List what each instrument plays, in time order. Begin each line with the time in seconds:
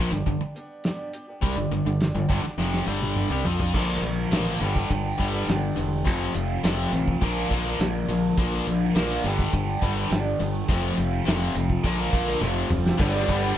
Already playing: fingered electric bass A#1, distorted electric guitar A#2 F3, steel-string acoustic guitar G3 B3
0.00 steel-string acoustic guitar D4 G4
0.11 fingered electric bass G1, distorted electric guitar G2 D3, steel-string acoustic guitar G3 B3 D4 G4, snare, closed hi-hat
0.26 fingered electric bass G1, distorted electric guitar G2 D3, kick, closed hi-hat
0.40 muted fingered electric bass stroke, muted distorted electric guitar stroke, muted overdriven electric guitar stroke
0.55 steel-string acoustic guitar G3 B3 D4 G4, closed hi-hat
0.84 steel-string acoustic guitar G2 D3 G3 B3 D4 G4, snare, closed hi-hat
1.13 steel-string acoustic guitar G3 B3 D4 G4, closed hi-hat
1.27 steel-string acoustic guitar G3 B3 D4 G4
1.41 fingered electric bass C2, steel-string acoustic guitar G2 D3 G3 B3 D4 G4, distorted electric guitar C3 G3, kick, closed hi-hat
1.56 fingered electric bass G1, distorted electric guitar G2 D3
1.70 fingered electric bass G1, distorted electric guitar G2 D3, steel-string acoustic guitar G3 B3 D4 G4, closed hi-hat
1.85 fingered electric bass G1, distorted electric guitar G2 D3
2.00 steel-string acoustic guitar G2 D3 G3 B3 D4 G4, snare, closed hi-hat
2.14 fingered electric bass G1, distorted electric guitar G2 D3, steel-string acoustic guitar G3 B3 D4 G4
2.27 fingered electric bass G1, distorted electric guitar G2 D3, steel-string acoustic guitar G3 B3 D4 G4, kick, closed hi-hat
2.43 steel-string acoustic guitar G3 B3 D4 G4, muted overdriven electric guitar stroke, muted distorted electric guitar stroke, muted fingered electric bass stroke, snare
2.58 fingered electric bass F1, distorted electric guitar F2 C3 F3, snare
2.74 snare
2.86 fingered electric bass G1, distorted electric guitar G2 D3 G3, steel-string acoustic guitar G3 B3 D4 G4
3.02 high tom
3.16 steel-string acoustic guitar G2 D3 G3 B3 D4 G4, mid tom
3.30 fingered electric bass C2, distorted electric guitar C3 G3
3.44 fingered electric bass F2, distorted electric guitar F3 C4 F4, steel-string acoustic guitar G3 B3 D4 G4, floor tom
3.59 steel-string acoustic guitar G3 B3 D4 G4, floor tom
3.74 fingered electric bass A#1, steel-string acoustic guitar A#2 D3 F3 A#3 D4 A#4, distorted electric guitar A#2 F3 A#3, overdriven electric guitar D3 D4 A#4, kick, crash
4.02 fingered electric bass A#1, distorted electric guitar A#2 F3, steel-string acoustic guitar F3 A#3 D4 A#4, closed hi-hat
4.31 fingered electric bass A1, distorted electric guitar A#2 F3 A#3, steel-string acoustic guitar A#2 D3 F3 A#3 D4 A#4, snare, closed hi-hat
4.61 fingered electric bass G1, distorted electric guitar G2 D3 G3, steel-string acoustic guitar G3 B3 D4, overdriven electric guitar B3 D4 G4, closed hi-hat
4.75 steel-string acoustic guitar G3 B3 D4 B4, kick
4.90 fingered electric bass G1, distorted electric guitar G2 D3, kick, closed hi-hat
5.04 steel-string acoustic guitar G3 B3 D4 B4
5.18 fingered electric bass G1, distorted electric guitar G2 D3 G3, steel-string acoustic guitar G3 B3 D4, kick, closed hi-hat
5.22 steel-string acoustic guitar B4
5.33 steel-string acoustic guitar G3 B3 D4 B4
5.47 fingered electric bass G1, steel-string acoustic guitar G2 D3 G3 B3 D4 B4, distorted electric guitar G2 D3, snare, closed hi-hat
5.76 fingered electric bass E1, distorted electric guitar G2 D3, steel-string acoustic guitar G3 B3 D4 B4, closed hi-hat
6.05 fingered electric bass F1, distorted electric guitar F2 C3 F3, steel-string acoustic guitar F3 C4 F4 A4, overdriven electric guitar A3 C4, kick, closed hi-hat
6.09 overdriven electric guitar F4
6.35 fingered electric bass F1, distorted electric guitar F2 C3, steel-string acoustic guitar F3 C4 F4 A4, closed hi-hat
6.63 fingered electric bass F1, distorted electric guitar F2 C3 F3, steel-string acoustic guitar F3 C4 F4 A4, snare, closed hi-hat
6.93 fingered electric bass A1, distorted electric guitar F2 C3, steel-string acoustic guitar F3 C4 F4 A4, closed hi-hat
7.07 steel-string acoustic guitar C4 F4 A4, kick
7.21 fingered electric bass A#1, distorted electric guitar A#2 F3 A#3, steel-string acoustic guitar A#2 D3 F3 A#3 D4 A#4, overdriven electric guitar D3 D4 F4, kick, closed hi-hat
7.36 steel-string acoustic guitar F3 A#3 D4 A#4
7.49 fingered electric bass A#1, distorted electric guitar A#2 F3 A#3, steel-string acoustic guitar F3 A#3 D4 A#4, kick, closed hi-hat
7.66 steel-string acoustic guitar F3 A#3 D4 A#4
7.79 fingered electric bass A#1, distorted electric guitar A#2 F3, steel-string acoustic guitar A#2 D3 F3 A#3 D4 A#4, snare, closed hi-hat
8.08 fingered electric bass A#1, distorted electric guitar A#2 F3, steel-string acoustic guitar F3 A#3 D4 A#4, closed hi-hat
8.37 fingered electric bass A#1, distorted electric guitar A#2 F3 A#3, steel-string acoustic guitar A#2 D3 F3 A#3 D4 A#4, overdriven electric guitar D3 D4 F4, kick, closed hi-hat
8.53 tambourine
8.66 fingered electric bass A#1, distorted electric guitar A#2 F3, steel-string acoustic guitar F3 A#3 D4 A#4, closed hi-hat, tambourine
8.82 tambourine
8.94 fingered electric bass A#1, steel-string acoustic guitar A#2 D3 F3 A#3 D4 A#4, distorted electric guitar A#2 F3 A#3, snare, closed hi-hat, tambourine
9.23 fingered electric bass G1, distorted electric guitar G2 D3 G3, steel-string acoustic guitar G3 B3 D4, overdriven electric guitar B3 D4 G4, closed hi-hat, tambourine
9.37 steel-string acoustic guitar G3 B3 D4 B4, kick
9.53 fingered electric bass G1, distorted electric guitar G2 D3, kick, closed hi-hat
9.66 steel-string acoustic guitar G3 B3 D4 B4, tambourine
9.80 fingered electric bass G1, distorted electric guitar G2 D3 G3, steel-string acoustic guitar G3 B3 D4 B4, kick, closed hi-hat, tambourine
9.96 steel-string acoustic guitar G3 B3 D4 B4, tambourine
10.10 fingered electric bass G1, steel-string acoustic guitar G2 D3 G3 B3 D4 B4, distorted electric guitar G2 D3, snare, closed hi-hat, tambourine
10.39 fingered electric bass G1, distorted electric guitar G2 D3, steel-string acoustic guitar G3 B3 D4 B4, snare, closed hi-hat, tambourine
10.55 tambourine
10.68 fingered electric bass F1, distorted electric guitar F2 C3 F3, steel-string acoustic guitar F3 C4 F4 A4, overdriven electric guitar A3 C4 F4, kick, closed hi-hat, tambourine
10.97 fingered electric bass F1, distorted electric guitar F2 C3, steel-string acoustic guitar F3 C4 F4 A4, closed hi-hat, tambourine
11.13 tambourine
11.25 fingered electric bass F1, distorted electric guitar F2 C3 F3, steel-string acoustic guitar F3 C4 F4 A4, snare, closed hi-hat, tambourine
11.54 fingered electric bass F1, distorted electric guitar F2 C3, steel-string acoustic guitar F3 C4 F4 A4, closed hi-hat, tambourine
11.67 steel-string acoustic guitar C4 F4 A4, kick
11.83 fingered electric bass A#1, steel-string acoustic guitar A#2 D3 F3 A#3 D4 A#4, distorted electric guitar A#2 F3 A#3, overdriven electric guitar D3 D4 F4, kick, closed hi-hat, tambourine
11.97 steel-string acoustic guitar F3 A#3 D4 A#4
12.11 fingered electric bass A#1, distorted electric guitar A#2 F3 A#3, steel-string acoustic guitar F3 A#3 D4 A#4, kick, closed hi-hat
12.27 steel-string acoustic guitar F3 A#3 D4 A#4, tambourine
12.40 fingered electric bass F1, distorted electric guitar F2 C3 F3, steel-string acoustic guitar F3 C4 F4 A4, overdriven electric guitar A3 C4 F4, high tom, tambourine
12.69 fingered electric bass F1, distorted electric guitar F2 C3, steel-string acoustic guitar F3 C4 F4 A4, tonewheel organ C4 D4, mid tom, tambourine
12.75 tonewheel organ E4 F4
12.80 tonewheel organ G4 A4
12.85 tonewheel organ B4 C5, snare, tambourine
12.91 tonewheel organ D5 E5
12.97 fingered electric bass G1, distorted electric guitar G2 D3 G3 B3 D4, steel-string acoustic guitar G2 D3 G3 B3 D4 B4, tonewheel organ D4 G4 B4 F5 G5, kick, ride
13.01 overdriven electric guitar B4
13.26 fingered electric bass G1, distorted electric guitar D3 G3 B3 D4, kick, ride, tambourine
13.41 steel-string acoustic guitar G3 B3 D4 B4